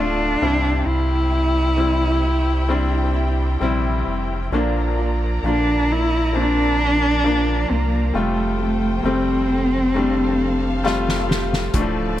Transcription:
Already playing: D1 D3 A3 D4 F4 A4 D5 A5
0.00 F4
0.41 C2 G2 C3 E3 G3 C4 E4 G4 C5 G5
0.86 C2 E4
1.32 G3 C4 E4
1.77 C3 E3 G3 C4 E4
2.23 G3 C4 E4
2.67 E3 G3 C4 D4 E4
3.14 G3 C4 E4
3.60 A#1 C3 E3 G3 C4 E4
4.07 F1
4.52 A#1 A#2 D3 F3 A#3 D4 F4 A#4 D5 A#5
4.98 A#3 D4 F4
5.43 A#1 A#2 D3 F3 A#3 D4
5.47 F4
5.91 A#3 D4 E4
6.33 D3 F3 A#3 C4 D4 F4
6.42 D4
7.24 A#2 D3 F3 A#3 D4 F4
7.70 C2 A#3 D4 F4
8.14 F1 C3 F3 G3 A3 C4 F4 G4 A4 C5 G5
8.59 A3 C4 G4
9.03 F1 F3 G3 A3 C4 G4
9.49 A3 C4 G4
9.94 F3 G3 A3 C4 D4 G4 F5
10.84 F3 G3 A3 C4 F4 G4, snare
11.09 snare
11.29 A3 C4 G4, snare
11.53 snare
11.73 D1 A2 D3 E3 F3 A3 D4 F4 D5 A5, kick, closed hi-hat
11.81 F3

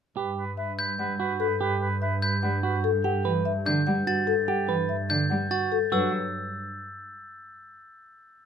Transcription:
0.16 G2 G4 B4
0.37 B4
0.57 B4 E5
0.78 B4 G6
0.99 G3 B4 F#5
1.20 F#4 B4
1.40 A4 B4
1.61 G4 B4
1.81 B4
2.02 B4 E5
2.22 B4 G6
2.43 G3 B4 F#5
2.63 F#4 B4
2.84 A4
3.04 G4 F#5
3.25 E3 B4
3.45 E5
3.66 D3 G6
3.87 G3 F#5
4.07 F#4 A6
4.27 A4
4.48 G4 F#5
4.69 E3 B4
4.89 E5
5.10 D3 G6
5.30 G3 F#5
5.51 F#4 A6
5.72 A4
5.92 G2 F#3 F#4 B4 E6

